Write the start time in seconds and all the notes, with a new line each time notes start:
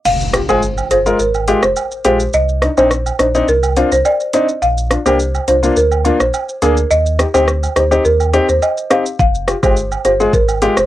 0.05 F1 F5, crash, impact, shaker
0.21 shaker
0.33 F4 G4, cross-stick, closed hi-hat, cabasa, shaker
0.49 G1 G#3 F4 G#4 C5, high woodblock, shaker
0.62 shaker
0.78 high woodblock, shaker
0.91 G1 F4 G#4 C5, closed hi-hat, cabasa, shaker
1.06 G#3 F4 A#4, shaker
1.19 G#1 A#4, shaker
1.34 high woodblock, shaker
1.48 G#3 F4 G4, closed hi-hat, cabasa, shaker
1.63 F1 C5, cross-stick, shaker
1.76 high woodblock, shaker
1.92 shaker
2.05 A#1 G#3 F4 G4 C5, closed hi-hat, cabasa, shaker
2.20 shaker
2.33 C2 D#5, shaker
2.49 shaker
2.62 D4 D#4, cross-stick, closed hi-hat, cabasa, shaker
2.77 A#1 C4 D4 D#4 C5, high woodblock, shaker
2.91 cross-stick, shaker
3.06 high woodblock, shaker
3.19 A#1 D4 D#4 C5, cross-stick, closed hi-hat, cabasa, shaker
3.35 C4 D4 D#4, shaker
3.48 C2 A#4, shaker
3.63 high woodblock, shaker
3.76 C4 D4 F4, closed hi-hat, cabasa, shaker
3.92 C2 C5, shaker
4.05 D5, high woodblock, shaker
4.20 shaker
4.33 C4 D4 D#4 D#5, closed hi-hat, cabasa, shaker
4.49 shaker
4.62 A#1 F5, shaker
4.77 shaker
4.90 D4 F4, cross-stick, closed hi-hat, cabasa, shaker
5.06 C2 A#3 D4 G4 C5, high woodblock, shaker
5.19 shaker
5.35 high woodblock, shaker
5.48 C2 D4 F4 C5, closed hi-hat, cabasa, shaker
5.63 A#3 D4 F4, shaker
5.76 D2 A#4, shaker
5.91 high woodblock, shaker
6.05 A#3 D4 F4, closed hi-hat, cabasa, shaker
6.20 A#1 C5, cross-stick, shaker
6.34 high woodblock, shaker
6.49 shaker
6.62 D2 A#3 D4 G#4 A#4, closed hi-hat, cabasa, shaker
6.77 shaker
6.91 D#2 D#5, shaker
7.06 shaker
7.19 D#4 G4, cross-stick, closed hi-hat, cabasa, shaker
7.34 D2 C4 D#4 G4 C5, high woodblock, shaker
7.48 cross-stick, shaker
7.63 high woodblock, shaker
7.76 D2 D#4 G4 C5, cross-stick, closed hi-hat, cabasa, shaker
7.91 C4 D#4 G4, shaker
8.05 D#2 A#4, shaker
8.20 high woodblock, shaker
8.33 C4 D#4 G4, closed hi-hat, cabasa, shaker
8.49 D#2 C5, shaker
8.62 D#5, high woodblock, shaker
8.77 shaker
8.90 C4 D#4 G4 F5, cross-stick, closed hi-hat, cabasa, shaker
9.06 shaker
9.19 F1 F5, kick, shaker
9.35 shaker
9.48 F4 G4, cross-stick, closed hi-hat, cabasa, shaker
9.63 G1 G#3 F4 G4 C5, kick, high woodblock, shaker
9.76 shaker
9.92 high woodblock, shaker
10.05 G1 F4 G4 C5, closed hi-hat, cabasa, shaker
10.20 G#3 F4 G#4, shaker
10.33 G#1 A#4, kick, shaker
10.49 high woodblock, shaker
10.62 G#3 F4 G4, closed hi-hat, cabasa, shaker
10.77 F1 C5, cross-stick, shaker